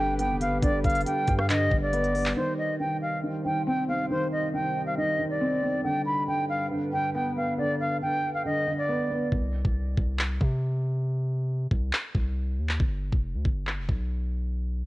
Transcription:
Already playing: G1 D3 G3 G4 B4 G5
0.19 B3 G5, closed hi-hat
0.30 F1
0.41 B3 F5, closed hi-hat
0.46 G1
0.63 G1 D3 D5, kick, closed hi-hat
0.84 G1 F5, kick, closed hi-hat
0.90 closed hi-hat
0.95 closed hi-hat
1.01 closed hi-hat
1.06 D3 G5, closed hi-hat
1.27 G2, kick, closed hi-hat
1.39 F5, cross-stick
1.50 D3 D#5, clap, closed hi-hat
1.71 G1 D3, kick
1.82 D5
1.93 B3, closed hi-hat
2.04 closed hi-hat
2.15 B3, open hi-hat
2.26 clap
2.36 C3 D#3 G3 D#4 C5
2.58 D#5
2.80 D#3 G5
3.02 F5
3.23 D#3
3.45 D#3 G5
3.67 C4 G5
3.89 C4 F5
4.10 D#3 C5
4.32 D#5
4.54 D#3 G5
4.86 F5
4.97 D#3 D#5
5.19 D#3
5.30 D5
5.41 C4
5.63 C4
5.84 G2 D3 B4 G5
6.06 B5
6.28 D3 G5
6.49 F5
6.71 D3
6.93 D3 G5
7.15 B3 G5
7.37 B3 F5
7.58 D3 D5
7.80 F5
8.02 D3 G5
8.34 F5
8.45 D3 D#5
8.67 D3
8.78 D5
8.89 B3
9.10 B3
9.32 C2, kick
9.65 C2, kick
9.97 C2, kick
10.19 clap
10.41 C3, kick
11.71 C2, kick
11.93 clap
12.15 C2, kick
12.58 D#2
12.69 clap
12.80 G1, kick
13.13 F1, kick
13.34 D2
13.45 G1, kick
13.67 clap
13.78 F1
13.89 B1, kick

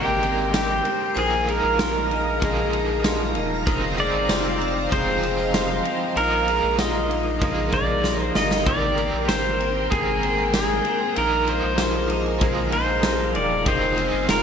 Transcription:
Already playing: G#1 D#3 G#3 A#3 C4 G4 A#4 D5 D#5 G5 A#5 C6
0.23 C4, ride
0.54 G4, snare, ride, tambourine
0.85 C4, ride
1.15 A#1 A#2 D#3 F3 A#3 D#4 G#4 C5 F5, ride
1.19 G#4
1.47 F3 G#3 A#3 D#4 G#4 A#4, ride
1.64 A#1
1.79 F4, snare, ride, tambourine
2.07 D#5, ride
2.12 D#4 G#5
2.16 A#5
2.40 F3 G#3 A#3, kick, ride
2.44 D#4 G#4
2.73 D#4, ride
3.04 F4, snare, ride, tambourine
3.35 D#1 D#4, ride
3.66 F1 D#3 F3 C4 D#4 G#4 C5, kick, ride
3.97 G#3 D#4 G#4 D5, ride
4.13 G1
4.29 F1 F4, snare, ride, tambourine
4.60 C4, ride
4.82 F5
4.88 F3 G#3 G#5
4.92 F1 C4 D#4 C5 A#5, kick, ride
4.98 G#4
5.22 C4, ride
5.38 C5
5.42 D#5
5.47 F5
5.54 F4, snare, ride, tambourine
5.85 C4, ride
6.16 A#1 A#2 D#3 F3 A#3 D#4 G#4 A#4, ride
6.48 G#3 A#3 D#4 G#4, ride
6.63 A#1
6.79 F4 D#5, snare, ride, tambourine
7.11 D#4, ride
7.39 F3 G#3 A#3, kick, ride
7.45 D#4 G#4
7.72 D#4 D5, kick, ride
8.04 F4, snare
8.23 C5
8.35 G1 D#4 D#5, snare
8.51 snare
8.66 G#1 D#3 G#3 C4 G4 A#4 D5 G5 C6, kick, ride
8.97 A#3 C4 G4 A#4, ride
9.13 A#1
9.28 G#1 C5, snare, ride, tambourine
9.60 C4, ride
9.90 G#1 G#3 A#3 C4 G#4, kick, ride
9.98 A#4
10.23 C4, ride
10.54 G#4, snare, ride, tambourine
10.85 C4, ride
11.16 A#1 A#2 D#3 F3 A#3 D#4 G#4 A#4 F5, ride
11.47 F3 G#3 A#3 D#4 G#4 C5, ride
11.64 A#1
11.78 F4, snare, ride, tambourine
12.10 D#4, ride
12.26 G#5
12.38 F3 G#3 A#3, kick, ride
12.44 D#4 G#4
12.72 D#4 C5, ride
13.03 F4, snare, ride, tambourine
13.35 D#1 D#4 D5 G5, ride
13.66 F1 D#3 F3 C4 D#4 G#4 C5, kick, ride
13.96 G#3 C4 D#4 G#4, ride
14.06 G#5
14.13 G1
14.28 F1 F4 A#4, snare, ride, tambourine

